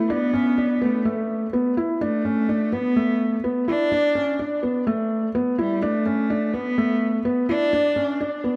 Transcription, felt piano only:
0.10 D4
0.33 C#4
0.58 D4
0.82 B3
1.05 A3
1.53 B3
1.77 E4
2.01 D4
2.25 C#4
2.49 D4
2.73 B3
2.96 A3
3.44 B3
3.68 E4
3.92 D4
4.15 C#4
4.39 D4
4.63 B3
4.87 A3
5.35 B3
5.58 E4
5.82 D4
6.06 C#4
6.30 D4
6.54 B3
6.78 A3
7.25 B3
7.49 E4
7.73 D4
7.96 C#4
8.20 D4
8.44 B3

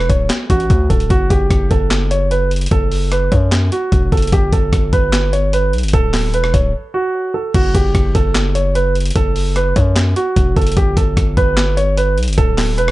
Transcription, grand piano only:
0.09 C#5
0.50 F#4
0.90 A4
1.10 F#4
1.30 G4
1.71 A4
2.11 C#5
2.31 B4
2.71 A4
3.12 B4
3.32 C#5
3.72 F#4
4.12 A4
4.33 G4
4.53 A4
4.93 B4
5.33 C#5
5.53 B4
5.94 A4
6.34 B4
6.54 C#5
6.94 F#4
7.34 A4
7.55 F#4
7.75 G4
8.15 A4
8.55 C#5
8.75 B4
9.16 A4
9.56 B4
9.76 C#5
10.16 F#4
10.57 A4
10.77 G4
10.97 A4
11.37 B4
11.77 C#5
11.97 B4
12.38 A4
12.78 B4

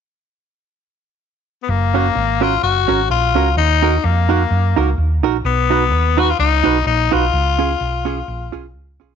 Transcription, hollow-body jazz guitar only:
1.94 C#4 F#4 A#4
2.15 muted hollow-body jazz guitar stroke
2.41 C#4 F#4 A#4
2.88 C#4 F#4 A#4
3.10 muted hollow-body jazz guitar stroke
3.35 C#4 F#4 A#4
3.82 D#4 F#4 A#4
4.29 D#4 F#4 A#4
4.76 D#4 F#4 A#4
5.23 D#4 F#4 A#4
5.70 D#4 F#4 B4
5.91 muted hollow-body jazz guitar stroke
6.17 D#4 F#4 B4
6.64 D#4 F#4 B4
6.85 muted hollow-body jazz guitar stroke
7.11 D#4 F#4 B4
7.58 C#4 F4 G#4
8.05 C#4 F4 G#4
8.52 C#4 F4 G#4
9.00 C#4 F4 G#4

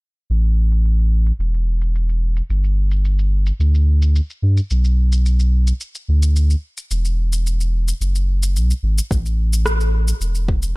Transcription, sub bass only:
0.30 A1
1.39 E1
2.50 G1
3.59 D2
4.42 G2
4.71 B1
6.08 D2
6.91 E1
8.01 F#1
8.56 B1
8.83 G#1
9.11 A1
10.20 E1

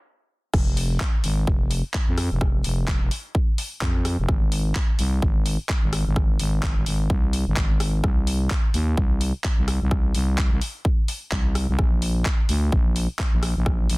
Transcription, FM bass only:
0.54 F1
1.24 G#1
1.47 F1
2.08 F2
2.32 F1
2.65 F1
3.02 F1
3.82 F2
4.19 F1
4.29 G#1
4.99 C2
5.22 G#1
5.83 G#1
6.07 G#1
6.40 G#1
6.77 G#1
6.87 G#1
7.10 C2
7.47 G#1
7.57 G#1
8.04 C2
8.74 D#2
8.97 C2
9.58 C2
9.82 C2
10.15 C2
10.52 C2
11.32 C2
11.69 C2
11.79 A#1
12.49 D2
12.72 A#1
13.33 A#1
13.57 A#1
13.89 A#1

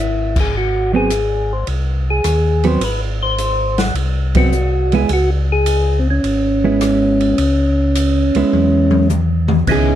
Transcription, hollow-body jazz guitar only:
0.93 F#3 B3 C4
2.64 F#3 B3 C4
4.36 F#3 B3 C4
4.93 G#3 B3 E4
6.64 G#3 B3 E4
8.36 G#3 B3 E4
9.72 G#4

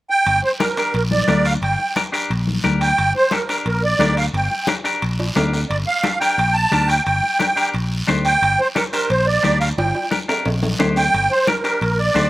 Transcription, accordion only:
0.10 G5
0.44 C5
0.61 A#4
0.78 A#4
0.95 A#4
1.11 D5
1.45 F5
1.63 G5
2.82 G5
3.16 C5
3.33 A#4
3.50 A#4
3.67 A#4
3.84 D5
4.18 F5
4.35 G5
5.70 D5
5.87 F5
6.20 G5
6.54 A5
6.88 G5
7.05 G5
8.25 G5
8.60 C5
8.76 A#4
8.93 A#4
9.11 C5
9.27 D5
9.61 F5
9.78 G5
10.97 G5
11.31 C5
11.47 A#4
11.65 A#4
11.82 A#4
11.99 D5

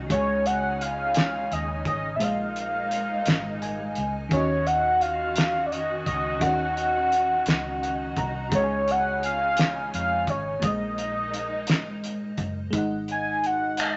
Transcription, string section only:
Already playing: D#4
0.10 C#3 C#4
2.21 G#3 A#3 D#4
4.32 D#3 C#4 D#4 F#4
8.51 C#3 C#4
10.63 G#3 A#3 D#4

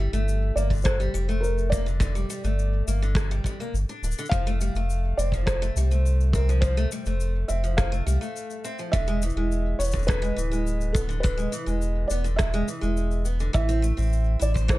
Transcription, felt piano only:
Already playing: E5
0.56 D5
0.84 C5
1.41 A#4
1.70 D5
4.29 F5
5.17 D5
5.46 C5
6.33 A#4
6.61 C5
7.48 E5
7.77 F5
8.92 E5
9.79 C#5
10.07 B4
10.93 A4
11.20 B4
12.07 D5
12.36 E5
13.54 E5
14.42 D5
14.70 C5

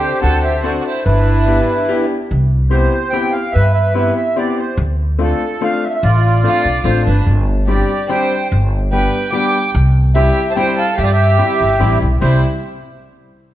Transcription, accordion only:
Already playing: G4 C5
0.22 C5 F#5
0.43 E5
0.64 D5
0.78 D5
0.85 C5
1.05 E4 B4
2.71 C5
3.10 G5
3.32 F5
3.52 B4 E5
3.73 E5
3.95 E5
4.16 E5
4.37 D5
4.59 C5
5.23 A4
5.64 F5
5.84 E5
5.89 E5
5.95 E5
6.04 F4 D5
6.43 D5
6.86 C5
7.07 B4
7.67 D5
8.08 G5
8.92 G5
9.31 D6
10.16 E5
10.51 A5
10.56 G5
10.79 F5
10.98 G4 E5
11.04 D5
11.13 G4 E5
12.22 C5

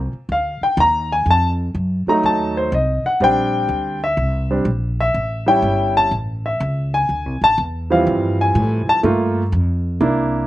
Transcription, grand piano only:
0.32 F5
0.63 G5
0.80 A#5
1.12 G#5
1.31 A5
2.08 F#3 A3 D#4 A#5
2.26 A5
2.57 C5
2.74 D#5
3.06 F#5
3.21 G3 C4 D4 G5
4.04 E5
4.51 G3 C4 D4
5.00 E5
5.46 G3 C#4 E4 G5
5.97 A5
6.46 E5
6.94 G#5
7.44 A5
7.90 E3 F3 G3 C4 F5
8.41 G#5
8.89 A5
9.03 A3 A#3 F4
10.01 A#3 D4 E4

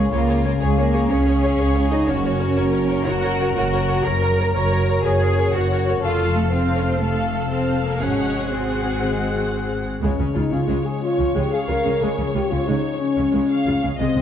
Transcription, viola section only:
0.12 G#4 C#5
0.28 G#4 C#5
0.44 G#4 C#5
0.60 G#4 C#5
0.77 G#4 C#5
0.93 G#4 C#5
1.10 G#4 C#5
1.26 G#4 C#5
1.43 G#4 C#5
1.59 G#4 C#5
1.75 G#4 C#5
1.91 G#4 C#5
2.07 A#4 C#5
2.24 A#4 C#5
2.39 A#4 C#5
2.56 A#4 C#5
2.72 A#4 C#5
2.89 A#4 C#5
3.05 A#4 C#5
3.23 A#4 C#5
3.40 A#4 C#5
3.57 A#4 C#5
3.72 A#4 C#5
3.88 A#4 C#5
4.05 A#4 C#5
4.22 A#4 C#5
4.38 A#4 C#5
4.55 A#4 C#5
4.71 A#4 C#5
4.88 A#4 C#5
5.05 A#4 C#5
5.21 A#4 C#5
5.39 A#4 C#5
5.55 A#4 C#5
5.71 A#4 C#5
5.88 A#4 C#5
6.04 A4 F5
6.54 A4 F5
7.02 A4 F5
7.51 A4 F5
8.01 G#4 F#5
8.52 G#4 F#5
10.03 G#3
10.19 G#3 C#4
10.35 G#3 F4
10.52 G#3 C#4
10.68 G#3
11.18 G#3 C#4
11.34 G#3
11.68 G#3 F4
11.85 G#3 C#4
12.02 G#3
12.18 G#3 C#4
12.34 G#3 F4
12.51 G#3 C#4
12.67 G#3
13.17 G#3 C#4
13.33 G#3
13.66 G#3 F4
13.83 G#3 C#4
14.00 G#3
14.16 G#3 C4

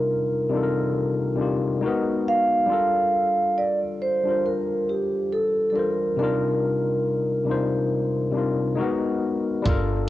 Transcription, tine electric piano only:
Already playing: C3 G3 D4 D#4 F4 A#4
0.49 C3 G3 D4
0.54 D#4 F4 A4
0.63 A#4
1.35 C3 G3 D4 D#4
1.41 F4 G4
1.81 G#3 D#4 F#4
1.86 B3 A#4
2.66 G3 D4 F4
2.72 A4 A#4
4.24 G3 D4 F4
4.29 A#4 C5
5.72 G3 D4 F4
5.77 A#4 C5
6.17 C3 G3 D4 D#4
6.22 F4 A#4
7.44 C3 G3 D4
7.49 D#4 F4 C5
8.31 C3 G3 D4
8.35 D#4 F4 A#4
8.75 G#3 D#4 F#4
8.80 B3 A#4
9.62 G3 D4 F4
9.67 A4 A#4

